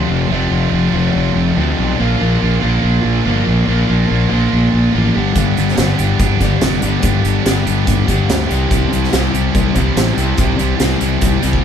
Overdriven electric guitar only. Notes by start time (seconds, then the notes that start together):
Already playing: F2 C3 F3
0.30 F2 C3 F3
0.94 F2 C3 F3
1.56 F2 C3 F3
1.99 A#2 F3 A#3
2.62 A#2 F3 A#3
3.24 A#2 F3 A#3
3.65 A#2 F3 A#3
4.29 A#2 F3 A#3
4.93 A#2 F3 A#3
5.14 G2 D3 G3
5.77 G2 D3 G3
6.41 G2 D3 G3
6.81 G2 D3 G3
7.45 G2 D3 G3
8.07 G2 D3 G3
8.46 C3 G3 C4
9.11 C3 G3 C4
9.75 C3 G3 C4
10.17 C3 G3 C4
10.80 C3 G3 C4
11.42 C3 G3 C4